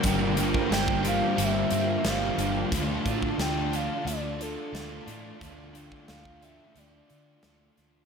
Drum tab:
HH |x-x-x-x-x-x-x-x-|x-x-x-x-x-x-x-x-|x-x-x-x-x-x-x-x-|
SD |----o-------o---|----o-------o---|----o-------o-o-|
BD |o--o-o----------|o-oo------------|o--o-o----------|